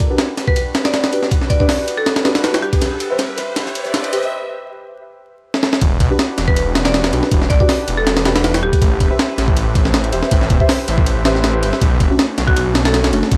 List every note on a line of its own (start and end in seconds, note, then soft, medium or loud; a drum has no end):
0.00 0.73 D4 medium
0.00 0.73 F#4 medium
0.00 0.73 G4 medium
0.00 0.73 B4 loud
0.00 kick medium
0.00 riser medium
0.10 0.19 D4 medium
0.10 0.19 F#4 medium
0.10 0.18 G4 medium
0.10 0.18 B4 medium
0.18 snare loud
0.18 closed hi-hat medium
0.18 ride medium
0.37 snare soft
0.37 closed hi-hat medium
0.37 ride medium
0.48 0.53 B4 medium
0.48 kick medium
0.56 0.63 B4 medium
0.56 closed hi-hat medium
0.56 ride medium
0.75 snare loud
0.75 closed hi-hat medium
0.75 ride medium
0.85 1.23 D5 medium
0.85 snare loud
0.85 ride medium
0.93 snare loud
0.93 closed hi-hat medium
0.93 ride medium
1.04 snare loud
1.04 ride medium
1.12 1.27 D4 medium
1.12 1.27 F#4 medium
1.12 1.27 G4 medium
1.12 1.27 B4 medium
1.12 closed hi-hat medium
1.12 ride medium
1.23 snare soft
1.23 closed hi-hat soft
1.31 2.23 D4 medium
1.31 2.23 F#4 medium
1.31 2.23 G4 medium
1.31 2.23 B4 loud
1.31 kick loud
1.31 closed hi-hat medium
1.31 ride medium
1.41 snare soft
1.50 1.56 D5 medium
1.50 kick medium
1.50 closed hi-hat medium
1.50 ride medium
1.60 1.68 D4 medium
1.60 1.68 F#4 medium
1.60 1.68 G4 medium
1.60 1.68 B4 medium
1.60 1.66 D5 medium
1.60 kick medium
1.60 snare soft
1.69 snare loud
1.69 open hi-hat medium
1.88 closed hi-hat medium
1.88 ride medium
1.98 2.20 A4 medium
2.06 snare medium
2.06 closed hi-hat medium
2.06 ride medium
2.16 snare loud
2.16 ride medium
2.25 2.80 D4 medium
2.25 2.80 F#4 medium
2.25 2.80 G4 medium
2.25 2.80 B4 loud
2.25 snare loud
2.25 closed hi-hat medium
2.25 ride medium
2.35 snare loud
2.35 ride medium
2.44 snare loud
2.44 closed hi-hat medium
2.44 ride medium
2.54 snare loud
2.54 ride medium
2.62 2.85 G4 medium
2.62 closed hi-hat medium
2.73 kick medium
2.73 ride medium
2.81 3.73 G4 medium
2.81 3.73 B4 medium
2.81 3.73 C5 medium
2.81 3.73 E5 loud
2.81 snare soft
2.81 closed hi-hat medium
2.81 ride medium
3.00 closed hi-hat medium
3.00 ride medium
3.10 3.19 G4 medium
3.10 3.19 B4 medium
3.10 3.19 C5 medium
3.10 3.19 E5 medium
3.18 snare medium
3.18 snare loud
3.18 closed hi-hat medium
3.18 ride medium
3.38 snare loud
3.38 closed hi-hat medium
3.38 ride medium
3.56 snare medium
3.56 snare soft
3.56 closed hi-hat medium
3.56 ride medium
3.66 snare loud
3.66 closed hi-hat medium
3.75 ride medium
3.85 snare soft
3.85 closed hi-hat medium
3.94 snare medium
3.94 snare loud
3.94 closed hi-hat medium
3.94 ride medium
4.04 ride soft
4.12 4.27 G4 medium
4.12 4.27 B4 medium
4.12 4.27 C5 medium
4.12 4.27 E5 medium
4.12 snare soft
4.12 closed hi-hat medium
4.12 ride medium
4.23 closed hi-hat soft
5.54 snare medium
5.63 snare medium
5.73 snare medium
5.81 5.99 E1 medium
5.81 6.73 D4 medium
5.81 6.73 F#4 medium
5.81 6.73 G4 medium
5.81 6.73 B4 loud
5.81 kick loud
5.81 ride medium
6.00 6.09 B1 loud
6.00 kick medium
6.00 ride medium
6.10 6.19 D4 medium
6.10 6.19 F#4 medium
6.10 6.19 G4 medium
6.10 6.19 B4 medium
6.19 snare loud
6.19 ride medium
6.38 7.11 E1 medium
6.38 snare soft
6.38 ride medium
6.48 6.53 B4 medium
6.48 kick medium
6.56 6.63 B4 medium
6.56 ride medium
6.75 snare loud
6.75 ride medium
6.85 7.23 D5 medium
6.85 snare loud
6.85 ride medium
6.94 snare loud
6.94 ride medium
7.04 snare loud
7.04 ride medium
7.13 7.22 B1 medium
7.13 7.27 D4 medium
7.13 7.27 F#4 medium
7.13 7.27 G4 medium
7.13 7.27 B4 medium
7.13 ride medium
7.23 snare soft
7.31 7.49 E1 loud
7.31 8.23 D4 medium
7.31 8.23 F#4 medium
7.31 8.23 G4 medium
7.31 8.23 B4 loud
7.31 kick loud
7.31 ride medium
7.42 snare soft
7.50 7.59 B1 loud
7.50 7.56 D5 medium
7.50 kick medium
7.50 ride medium
7.60 7.69 D4 medium
7.60 7.69 F#4 medium
7.60 7.69 G4 medium
7.60 7.69 B4 medium
7.60 7.66 D5 medium
7.60 kick medium
7.69 snare loud
7.69 open hi-hat medium
7.88 8.64 E1 medium
7.88 ride medium
7.97 8.20 A4 medium
8.07 snare loud
8.07 ride medium
8.17 snare loud
8.17 ride medium
8.25 8.81 D4 medium
8.25 8.81 F#4 medium
8.25 8.81 G4 medium
8.25 8.81 B4 loud
8.25 snare loud
8.25 ride medium
8.36 snare loud
8.36 ride medium
8.44 snare loud
8.44 ride medium
8.54 snare loud
8.54 ride medium
8.63 8.72 D1 medium
8.63 8.86 G4 medium
8.73 kick medium
8.73 ride medium
8.81 8.99 A1 medium
8.81 9.73 G4 medium
8.81 9.73 B4 medium
8.81 9.73 C5 medium
8.81 9.73 E5 loud
8.81 kick loud
8.81 ride medium
9.00 9.09 E1 medium
9.00 kick medium
9.00 ride medium
9.10 9.19 G4 medium
9.10 9.19 B4 medium
9.10 9.19 C5 medium
9.10 9.19 E5 medium
9.19 snare loud
9.19 ride medium
9.38 10.11 A1 medium
9.38 snare soft
9.38 ride medium
9.48 kick medium
9.57 ride medium
9.75 kick loud
9.75 ride medium
9.85 snare medium
9.94 snare loud
9.94 ride medium
10.04 ride soft
10.12 10.22 E1 medium
10.12 10.27 G4 medium
10.12 10.27 B4 medium
10.12 10.27 C5 medium
10.12 10.27 E5 medium
10.12 ride medium
10.23 snare soft
10.31 10.49 A1 loud
10.31 11.23 G4 medium
10.31 11.23 B4 medium
10.31 11.23 C5 medium
10.31 11.23 E5 loud
10.31 kick loud
10.31 ride medium
10.41 snare soft
10.50 10.59 E1 medium
10.50 kick medium
10.50 ride medium
10.60 10.69 G4 medium
10.60 10.69 B4 medium
10.60 10.69 C5 medium
10.60 10.69 E5 medium
10.60 kick medium
10.69 snare loud
10.69 open hi-hat medium
10.88 11.64 A1 medium
10.88 ride medium
10.98 kick loud
11.06 ride medium
11.25 11.80 G4 medium
11.25 11.80 B4 medium
11.25 11.80 C5 medium
11.25 11.80 E5 loud
11.25 snare loud
11.25 ride medium
11.35 snare soft
11.44 snare loud
11.44 ride medium
11.63 11.72 G1 medium
11.63 ride medium
11.73 snare soft
11.81 11.99 B1 loud
11.81 12.73 A3 loud
11.81 12.73 C#4 medium
11.81 12.73 D4 medium
11.81 12.73 F#4 loud
11.81 kick loud
11.81 ride medium
12.00 12.09 F#1 medium
12.00 kick medium
12.00 ride medium
12.10 12.18 A3 medium
12.10 12.19 C#4 medium
12.10 12.18 D4 medium
12.10 12.19 F#4 medium
12.19 snare loud
12.19 ride medium
12.38 13.12 B1 medium
12.38 snare soft
12.38 ride medium
12.47 12.53 F#4 medium
12.47 kick loud
12.56 12.63 F#4 medium
12.56 ride medium
12.75 snare loud
12.75 ride medium
12.85 13.23 A4 medium
12.85 snare loud
12.85 ride medium
12.94 snare loud
12.94 ride medium
13.04 snare loud
13.04 ride medium
13.13 13.22 F#1 medium
13.13 13.27 A3 medium
13.13 13.27 C#4 medium
13.13 13.27 D4 medium
13.13 13.27 F#4 medium
13.13 ride medium
13.23 snare soft
13.31 13.37 B1 medium
13.31 13.37 A3 medium
13.31 13.37 C#4 medium
13.31 13.37 D4 medium
13.31 13.37 F#4 loud
13.31 kick loud
13.31 ride medium